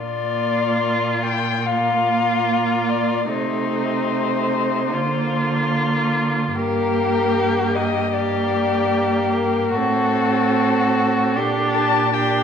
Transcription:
0.00 A#2 A#3 F4 D5
1.24 G5
1.64 A#3 F4 F5
2.90 D5
3.31 C3 A3 D#4 C5
4.94 D3 A#3 F4
6.55 G2 A#3 G4 A#4
7.76 D#5
8.14 A#3 G4 D5
9.35 A#4
9.75 A2 C4 F#4 A4
11.35 A#2 D4 G4
11.75 A5
12.14 D4 G4 G5

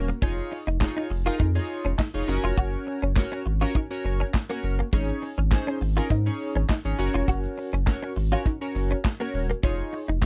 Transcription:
Already playing: D#1
0.08 A#3, closed hi-hat, shaker
0.22 F1 C#4 D#4 F4 G#4 C#5, kick, closed hi-hat, shaker
0.38 closed hi-hat, shaker
0.52 muted clean electric guitar stroke, open hi-hat, shaker
0.67 F1 D#4, closed hi-hat, shaker
0.81 D#4 F4 G#4 C#5, kick, snare, clap, closed hi-hat, shaker
0.96 D#4, closed hi-hat, shaker
1.10 F1, muted clean electric guitar stroke, open hi-hat, shaker
1.26 D#4 F4 G#4 A#4, closed hi-hat, shaker
1.40 F2 D#4, kick, closed hi-hat, shaker
1.55 D#4 F4 G#4 C#5, muted clean electric guitar stroke, closed hi-hat, shaker
1.69 open hi-hat, shaker
1.85 F1 C#4, closed hi-hat, shaker
1.99 D#4, kick, snare, clap, closed hi-hat, shaker
2.14 F1 D#4 F4 G#4 C#5, closed hi-hat, shaker
2.28 F#1 C#4 F#4 A#4 C#5, muted clean electric guitar stroke, open hi-hat, shaker
2.44 F1 F4, closed hi-hat, shaker
2.58 F#1 F#4, kick
2.87 muted clean electric guitar stroke
3.02 F#1 C#4
3.16 C#4 F#4 A#4 C#5, kick, snare, clap
3.32 C#4
3.46 G#1, muted clean electric guitar stroke
3.61 C#4 F4 F#4 A#4 C#5
3.75 D#4, kick
3.90 C#4 F#4 A#4 C#5
4.05 F#1, muted clean electric guitar stroke
4.20 C#4
4.34 kick, snare, clap
4.49 A#3 C#4 F#4 A#4 C#5
4.63 F#1, muted clean electric guitar stroke
4.79 A#3
4.93 G#1 G#3 C#4 D#4 G#4 C#5, kick, closed hi-hat, shaker
5.08 closed hi-hat, shaker
5.22 muted clean electric guitar stroke, open hi-hat, shaker
5.38 G#1 C#4, closed hi-hat, shaker
5.52 C#4 D#4 G#4 C5, kick, snare, clap, closed hi-hat, shaker
5.67 C#4, closed hi-hat, shaker
5.81 G#1, muted clean electric guitar stroke, open hi-hat, shaker
5.97 C#4 D#4 F4 G#4 A#4, closed hi-hat, shaker
6.10 G#2 D#4, kick, closed hi-hat, shaker
6.26 C#4 D#4 G#4 C#5, muted clean electric guitar stroke, closed hi-hat, shaker
6.40 open hi-hat, shaker
6.55 G#1 C#4, closed hi-hat, shaker
6.69 D#4, kick, snare, clap, closed hi-hat, shaker
6.85 G#1 C#4 D#4 G#4 C#5, closed hi-hat, shaker
6.99 F#1 C#4 F#4 A#4 C#5, muted clean electric guitar stroke, open hi-hat, shaker
7.14 F1 F4, closed hi-hat, shaker
7.28 F#1 F#4, kick, closed hi-hat, shaker
7.44 closed hi-hat, shaker
7.58 muted clean electric guitar stroke, open hi-hat, shaker
7.73 F#1 C#4, closed hi-hat, shaker
7.87 C#4 F#4 A#4 C#5, kick, snare, clap, closed hi-hat, shaker
8.02 C#4, closed hi-hat, shaker
8.16 G#1, muted clean electric guitar stroke, open hi-hat, shaker
8.32 C#4 F4 F#4 A#4 C#5, closed hi-hat, shaker
8.46 D#4, kick, closed hi-hat, shaker
8.61 C#4 F#4 A#4 C#5, closed hi-hat, shaker
8.75 F#1, muted clean electric guitar stroke, open hi-hat, shaker
8.91 C#4, closed hi-hat, shaker
9.05 kick, snare, clap, closed hi-hat, shaker
9.20 A#3 C#4 F#4 A#4 C#5, closed hi-hat, shaker
9.34 D#1, muted clean electric guitar stroke, open hi-hat, shaker
9.50 A#3, closed hi-hat, shaker
9.63 F1 C#4 D#4 F4 G#4 C#5, kick, closed hi-hat, shaker
9.79 closed hi-hat, shaker
9.93 muted clean electric guitar stroke, open hi-hat, shaker
10.08 F1 D#4, closed hi-hat, shaker
10.22 D#4 F4 G#4 C#5, kick, clap, closed hi-hat, shaker

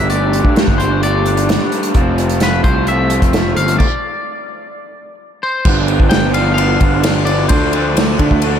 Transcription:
Already playing: G1 G4
0.09 G3 A3 D4 G4 D5, closed hi-hat
0.33 closed hi-hat
0.45 G2, kick
0.56 G3 A3 D4 G4, snare, closed hi-hat
0.68 G1, kick
0.78 A3 D4 G4 C5, closed hi-hat
1.02 G3 A3 D4 G4 D5, closed hi-hat
1.25 A3 D4 G4, closed hi-hat
1.37 closed hi-hat
1.48 G3 A3 D4 G4, snare, closed hi-hat
1.72 A3 D4 G4, closed hi-hat
1.83 closed hi-hat
1.94 F1 F3 A3 C4 F4, kick, closed hi-hat
2.18 closed hi-hat
2.29 closed hi-hat
2.40 F3 A3 C4 F4 B4, snare, closed hi-hat
2.64 C2 A3 C4 F4 C5, kick, closed hi-hat
2.87 F3 A3 C4 F4 E5, closed hi-hat
3.10 A3 C4 F4, closed hi-hat
3.22 F1, kick, snare, closed hi-hat
3.33 F3 A3 C4 F4, snare, closed hi-hat
3.56 G1 A3 C4 F4 F5, closed hi-hat
3.68 closed hi-hat
3.79 D5, kick, crash
5.43 C5
5.65 G1 G2 D3 F3 B3 D4, kick, crash
5.88 G2 D3 F3 B3 D4, ride
6.00 G1, kick
6.09 G2 D3 F3 B3 D4 G5, snare, ride
6.34 G2 D3 F3 B3 D4 F5, ride
6.54 G2 D3 F5, ride
6.58 F3 B3 D4
6.80 G1 G2 D3 F3 B3 D4, kick, ride
7.03 G2 D3 F3 B3 D4, snare, ride
7.25 G2 D3 F3 B3 D4 D5, ride
7.49 D2 D3 F3 A3 D4 C5, kick, ride
7.72 D3 F3 A3 D4, ride
7.95 D3 F3 A3 D4, snare, ride
8.18 D3 F3 A3 D4, kick, ride
8.31 D2, kick
8.42 D3 F3 A3 D4, ride

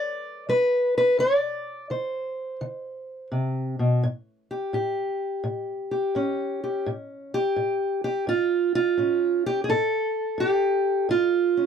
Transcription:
Already playing: G3 D5
0.49 G3 B4
0.98 B4
1.19 D3 D5
1.90 D3 C5
2.61 D3
3.32 C3
3.79 B2
4.03 A2
4.51 G4
4.73 A2 G4
5.44 A2
5.91 G4
6.15 A2 C#4
6.64 G4
6.86 A2
7.34 G4
7.56 A2
8.04 G4
8.27 A2 F4
8.75 F4
8.97 A2 C#4
9.46 G4
9.64 G#4
9.69 A2 A4
10.38 A2 G4
11.09 A2 F4
11.57 C#4

